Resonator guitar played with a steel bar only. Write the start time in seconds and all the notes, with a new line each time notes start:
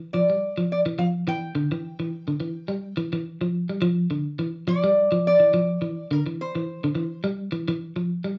0.13 D5
0.72 D5
0.99 F5
1.28 G5
4.68 D5
5.27 D5
6.13 A#4
6.41 C5